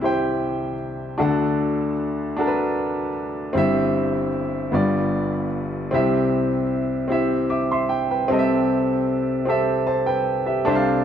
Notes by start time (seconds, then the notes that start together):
Already playing: C2 C3 G4 C5 G5
0.00 E4 G4
0.04 C5 G5
1.18 D2 D3 D4 F#4 A4 F#5
2.37 D4 F#4 A4 A#4
2.47 B4
3.53 G1 G2 C4 E4 G4
3.58 E5
4.72 G1 G2 B3 F4 G4 D5
5.91 C2 C3 C4 E4 G4 E5
7.08 C4 E4 G4 E5
7.50 E5 D6
7.72 E5 C6
7.89 G5
8.11 B4 G5
8.28 C2 C3 C4 G4 A4
8.33 D#5
8.39 E5
9.45 C4 G4 A4
9.50 E5
9.87 C5 A5
10.06 B4 G5
10.46 G4 E5
10.65 C2 C3 D4 A4 C5
10.69 E5
10.75 F5